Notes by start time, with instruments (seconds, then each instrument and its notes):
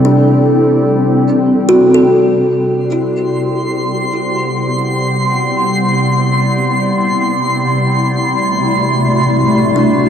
Already playing: synth drone C3 G3, ambient pad C4 E4 A4 D5
0.05 kalimba D4
1.69 kalimba F#4
1.94 kalimba A4
2.51 synth drone C3 G3, synth texture C6
2.77 ambient pad B3
2.92 kalimba E4
3.06 ambient pad E4
3.78 ambient pad D5
7.34 ambient pad C3
7.73 ambient pad A3
8.00 ambient pad F#4
9.76 kalimba D4